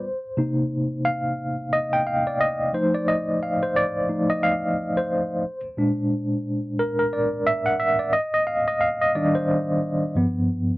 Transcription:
X:1
M:4/4
L:1/16
Q:"Swing 16ths" 1/4=89
K:Cm
V:1 name="Tine electric piano"
c3 z3 f4 e g f d e2 | c d e2 f c d3 e f3 c3- | c z6 z B B d2 =e ^f e d | e e f e f e d c4 z4 z |]
V:2 name="Tine electric piano" clef=bass
z2 [C,B,E]12- [C,B,E]2 | [F,=A,E]2 z6 [F,A,E]2 z6 | z2 [B,,A,D]6 z8 | z6 [E,G,D]2 z4 [G,,F,=B,]2 z2 |]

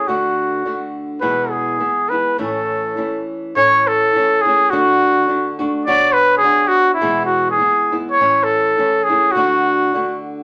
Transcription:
X:1
M:2/4
L:1/16
Q:"Swing" 1/4=104
K:A
V:1 name="Trumpet"
F6 z2 | B2 G4 B2 | A6 z2 | c2 A4 G2 |
F6 z2 | d2 B2 G2 F2 | E2 F2 G3 z | c2 A4 G2 |
F6 z2 |]
V:2 name="Nylon-string guitar"
[D,A,DF]4 [D,A,DF]4 | [E,,B,,E,G,B,E]4 [E,G,B,E]2 [E,G,B,E]2 | [A,,E,A,CE]4 [E,A,CE]4 | [A,,E,A,CE]4 [E,A,CE]2 [A,CE]2 |
[D,A,DF]4 [D,A,DF]2 [A,DF]2 | [B,,F,B,DF]4 [F,B,DF]4 | [E,,B,,E,G,B,E]4 [E,G,B,E]2 [E,G,B,E]2 | [A,,E,A,CE]4 [E,A,CE]2 [A,CE]2 |
[D,A,DF]4 [D,A,DF]4 |]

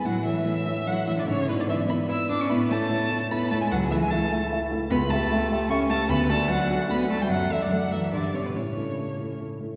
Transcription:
X:1
M:3/4
L:1/16
Q:1/4=148
K:A
V:1 name="Violin"
f2 e6 f2 e d | c2 B d e2 b2 e'2 d' c' | b2 a6 b2 a g | f2 e g a4 z4 |
[K:D] b2 a6 c'2 a2 | b2 a2 f4 b2 a g | f2 e d f2 e2 d2 c B | c8 z4 |]
V:2 name="Grand piano"
A,,2 [A,Ec]2 [A,Ec]2 [A,Ec]2 [A,Ec]2 [A,Ec]2 | G,,2 [B,Ed]2 [B,Ed]2 [B,Ed]2 [B,Ed]2 [B,Ed]2 | A,,2 [A,Ec]2 [A,Ec]2 [A,Ec]2 [A,Ec]2 [A,Ec]2 | C,,2 [A,Ee]2 [A,Ee]2 [A,Ee]2 [A,Ee]2 [A,Ee]2 |
[K:D] C,,2 [A,Ge]2 [A,Ge]2 [A,Ge]2 [A,Ge]2 [A,Ge]2 | D,,2 [A,Fd]2 [A,Fd]2 [A,Fd]2 [A,Fd]2 [A,Fd]2 | F,,2 [A,Ad]2 [A,Ad]2 [A,A]2 G,,2 [B,Gd]2 | A,,2 [A,EA]2 [A,EA]2 [A,EA]2 [A,EA]2 [A,EA]2 |]
V:3 name="Cello" clef=bass
F,2 E,6 F,2 E, D, | C,2 B,, D, E,2 B,2 E2 D C | B,2 A,6 B,2 A, G, | F,2 E, G, A,4 z4 |
[K:D] B,2 A,6 C2 A,2 | B,2 A,2 F,4 B,2 A, G, | F,2 E, D, F,2 E,2 D,2 C, B,, | C,8 z4 |]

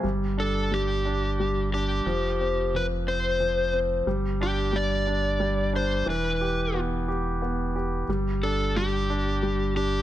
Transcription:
X:1
M:6/8
L:1/8
Q:3/8=60
K:Gmix
V:1 name="Electric slide guitar"
z A G3 G- | G2 B c2 z | z G d3 c | B2 z4 |
z A G3 G |]
V:2 name="Grand piano"
G, D G, D G, D | F, C F, C F, C | G, D G, D G, D | E, G B, G B, G |
G, D G, D G, D |]
V:3 name="Sub bass" clef=bass
G,,,6 | F,,,6 | G,,,6 | E,,,6 |
G,,,6 |]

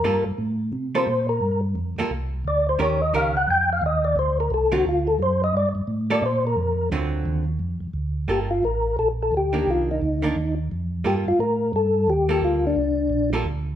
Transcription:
X:1
M:4/4
L:1/8
Q:"Swing" 1/4=174
K:Gm
V:1 name="Tonewheel organ"
B z4 c2 B- | B z4 z d c | _d e f ^f g =f e =d | c B A ^F ^E A c _e |
d z2 d c B3 | z8 | G F B2 A A G2 | F E4 z3 |
G F B2 A2 G2 | F D4 z3 |]
V:2 name="Hollow-body jazz guitar"
[G,B,FA] z4 [G,B,FA] z2 | z3 [G,B,FA] z4 | [E,_DGB] z [E,DGB] z4 z | z3 [D,^F,C^E] z4 |
z3 [G,B,FA] z4 | [D,^F,C^E]3 z4 z | [G,B,FA] z6 [E,B,D]- | [E,B,D]2 z [E,B,D] z4 |
[G,B,FA] z6 [G,B,FA]- | [G,B,FA]2 z3 [G,B,FA] z2 |]
V:3 name="Tonewheel organ" clef=bass
G,, G,, A,,2 C,2 B,,2 | G,,2 F,, F,, C,,2 D,,2 | E,,2 _D,,2 F,,2 E,,2 | D,,2 C,,2 D,,2 ^F,,2 |
G,, G,, A,,2 B,,2 F,,2 | D,,2 E,,2 ^E,, E,, D,,2 | G,,,2 A,,,2 B,,,2 D,,2 | C,,2 D,,2 E,,2 F,,2 |
G,, G,, A,,2 G,,2 E,,2 | D,,2 C,,2 B,,,2 D,,2 |]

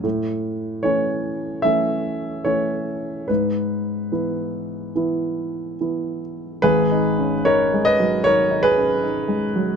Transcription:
X:1
M:4/4
L:1/8
Q:1/4=74
K:G#m
V:1 name="Grand piano"
z2 c2 e2 c2 | B6- B z | [GB]2 [Ac] [Bd] [Ac] [GB]3 |]
V:2 name="Grand piano"
=A,,2 [E,=A,C]2 [E,A,C]2 [E,A,C]2 | G,,2 [E,B,E]2 [E,B,E]2 [E,B,E]2 | (3[G,,,G,,] D C (3D G, F, (3D, D C (3D G, F, |]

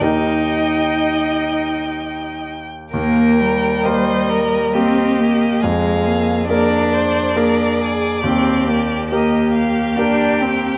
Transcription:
X:1
M:3/4
L:1/8
Q:1/4=68
K:Eb
V:1 name="Violin"
e4- e z | g2 e2 e2 | f2 d4- | d2 e f g2 |]
V:2 name="Violin"
g6 | B2 c B G2 | A2 B c B A | G2 G4 |]
V:3 name="Grand piano"
[E,,EGB]6 | E,,2 [B,GB]2 [B,GB]2 | F,,2 [B,AB]2 [B,AB]2 | E,,2 [B,GB]2 [B,GB]2 |]
V:4 name="Cello"
E4- E z | B, G,3 C B, | A, B, D3 z | C B,3 D C |]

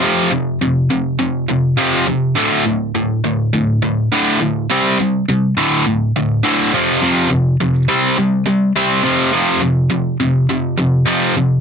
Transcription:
X:1
M:4/4
L:1/8
Q:1/4=103
K:F
V:1 name="Distorted electric guitar" clef=bass
[F,,C,F,] [F,,C,] [F,,C,] [F,,C,] [F,,C,] [F,,C,] [F,,C,F,] [F,,C,] | [D,,A,,D,] [D,,A,,] [D,,A,,] [D,,A,,] [D,,A,,] [D,,A,,] [D,,A,,D,] [D,,A,,] | [C,G,C] [C,G,] [C,G,] [D,,A,,D,] [D,,A,,] [D,,A,,] [D,,A,,D,] [F,,C,F,] | [F,,C,F,] [F,,C,] [F,,C,] [C,G,C] [C,G,] [C,G,] [C,G,C] [F,,C,F,] |
[F,,C,F,] [F,,C,] [F,,C,] [F,,C,] [F,,C,] [F,,C,] [F,,C,F,] [F,,C,] |]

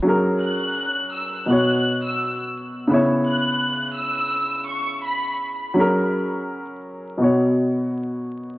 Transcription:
X:1
M:4/4
L:1/16
Q:"Swing 16ths" 1/4=84
K:F#mix
V:1 name="Violin section"
z2 f'4 e'2 f'3 e'2 z3 | z2 f'4 e'4 c'2 b2 z2 | z16 |]
V:2 name="Grand piano"
[F,CGA]8 [B,,B,Fc]8 | [C,B,Ec]16 | [F,CGA]8 [B,,B,Fc]8 |]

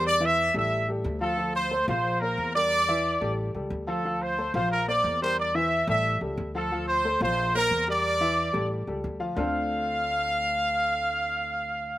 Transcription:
X:1
M:4/4
L:1/8
Q:1/4=180
K:Dm
V:1 name="Trumpet section"
d e2 e2 z2 A- | A c2 c2 B2 d- | d4 z3 A- | A c2 c B d2 c |
d e2 e2 z2 A- | A c2 c2 B2 d- | d4 z4 | f8- |
f8 |]
V:2 name="Grand piano"
[G,GB] [E,Ee]2 [G,GA]2 [G,GA]2 [F,Ff] | [F,Ff]2 [A,Ac] [F,Ff]2 [B,Bc]2 [G,GB]- | [G,GB] [E,Ee]2 [G,GA]2 [G,GA]2 [F,Ff] | [F,Ff]2 [A,Ac] [F,Ff]2 [B,Bc]2 [G,GB]- |
[G,GB] [E,Ee]2 [G,GA]2 [G,GA]2 [F,Ff] | [F,Ff]2 [A,Ac] [F,Ff]2 [B,Bc]2 [G,GB]- | [G,GB] [E,Ee]2 [G,GA]2 [G,GA]2 [F,Ff] | [D,A,CDFA]8- |
[D,A,CDFA]8 |]
V:3 name="Upright bass" clef=bass
E,,3 A,,,3 D,,2- | D,,3 B,,,3 E,,2- | E,,3 A,,,2 ^C,, D,,2- | D,,3 B,,,3 E,,2- |
E,,3 A,,,2 ^C,, D,,2- | D,,3 B,,,3 E,,2- | E,,3 A,,,2 ^C,, D,,2 | D,,8- |
D,,8 |]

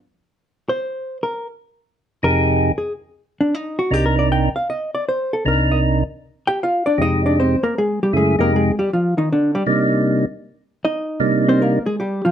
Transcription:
X:1
M:4/4
L:1/8
Q:"Swing" 1/4=156
K:Cm
V:1 name="Hollow-body jazz guitar"
z3 c3 B z | z3 B3 A z | z D E ^F (3G B d g =f | e d c =A B e z2 |
z [Gg] [Ff] [Dd] [Ee] [Dd] [Cc] [B,B] | [A,A] [G,G] [A,A] [B,B] [A,A] [G,G] [F,F] [E,E] | [D,D] [G,G] z6 | [Ee]3 [Cc] [B,B] [A,A] [G,G] [F,F] |]
V:2 name="Tonewheel organ"
z8 | z3 [F,,C,EGA]3 z2 | z4 [C,,C,DEB]3 z | z4 [C,,C,DEB]3 z |
z4 [F,,C,A,EG]3 z | z2 [^F,,_D,=A,=E_A] [=F,,C,_A,_EG]2 z3 | z2 [C,G,B,DE]3 z3 | z2 [C,G,B,DE]3 z3 |]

